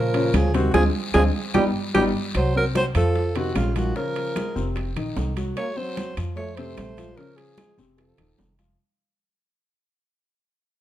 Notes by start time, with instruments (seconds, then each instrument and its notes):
Already playing: upright bass A#2, trombone F3, alto saxophone A#4
0.14 grand piano C#3 C#4 F4, high bongo, high conga, high timbale
0.33 upright bass D2, trombone F3, alto saxophone G#4, high bongo, low bongo, high conga, high timbale, low timbale, short guiro, claves
0.54 grand piano C3 C4 C5, trombone D#3, alto saxophone F#4, high bongo, high conga, high timbale, short guiro
0.74 upright bass D2, trombone F3, grand piano G#3 C4 D4, alto saxophone G#4, high bongo, high conga, high timbale, long guiro, claves
1.14 upright bass D2, trombone F3, grand piano G#3 C4 D4, alto saxophone G#4, high bongo, high conga, high timbale, long guiro, claves
1.54 upright bass G1, grand piano G3 B3 D#4, trombone G3, alto saxophone G4, high bongo, high conga, high timbale, long guiro, claves
1.94 upright bass G1, trombone G3, grand piano G3 B3 D#4, alto saxophone G4, high bongo, high conga, high timbale, claves
2.35 upright bass C2, trombone F#3, alto saxophone C5, high bongo, high conga, high timbale, long guiro, claves
2.55 trombone F#3, grand piano C4 C5, alto saxophone A#4, high bongo, high conga
2.75 trombone F#3, alto saxophone C5, high bongo, high conga, high timbale, low timbale, short guiro
2.95 upright bass F2, grand piano F3 F4, trombone F3, alto saxophone A4, high conga, high timbale, short guiro, claves
3.16 high bongo, high conga, long guiro
3.35 grand piano C3 C4, trombone D#3, alto saxophone F#4, high bongo, high conga, high timbale
3.55 upright bass A#1, trombone C#3, alto saxophone F4, high bongo, low bongo, high conga, high timbale, low timbale, short guiro, claves
3.76 trombone D#3, grand piano F3 F4, alto saxophone F#4, high bongo, high conga, high timbale, short guiro
3.96 grand piano C#3 C#4, trombone F3, alto saxophone A#4, high bongo, high conga, long guiro
4.16 high bongo, high conga, high timbale
4.36 grand piano G#3 G#4, high bongo, high conga, high timbale, low timbale, short guiro, claves
4.55 upright bass F1, grand piano C3 C4, high conga, short guiro
4.76 high bongo, high conga, high timbale, long guiro
4.96 upright bass A#1, grand piano D#3 D#4, high bongo, high conga, high timbale, claves
5.17 upright bass C2, high bongo, low bongo, high conga, low timbale, short guiro
5.37 grand piano F#3 F#4, high bongo, high conga, high timbale, short guiro
5.57 trombone A#3, alto saxophone C#5, high bongo, high conga, high timbale, long guiro, claves
5.77 trombone F#3, grand piano C4 C5, alto saxophone C5, high bongo, high conga
5.97 high bongo, high conga, high timbale, low timbale, short guiro
6.17 upright bass F2, grand piano F3 F4, high conga, high timbale, short guiro, claves
6.36 trombone A3, alto saxophone C#5, high bongo, high conga, long guiro
6.56 grand piano C3 C4, trombone A3, alto saxophone C5, high bongo, high conga, high timbale
6.77 upright bass A#1, high bongo, low bongo, high conga, high timbale, low timbale, short guiro, claves
6.97 grand piano F3 F4, high bongo, high conga, high timbale, short guiro
7.16 grand piano C#3 C#4, trombone F3, alto saxophone A#4, high bongo, high conga, long guiro
7.37 trombone F3, alto saxophone G#4, high bongo, high conga, high timbale
7.58 grand piano G#3 G#4, high bongo, high conga, high timbale, low timbale, short guiro, claves
7.78 upright bass F1, grand piano C3 C4, high conga, short guiro
7.97 trombone F3, alto saxophone A4, high bongo, high conga, high timbale, long guiro
8.18 upright bass D#1, grand piano D#3 D#4, high bongo, high conga, high timbale, claves
8.38 upright bass F1, high bongo, low bongo, high conga, low timbale, short guiro
8.58 grand piano F3 F4, high bongo, high conga, high timbale, short guiro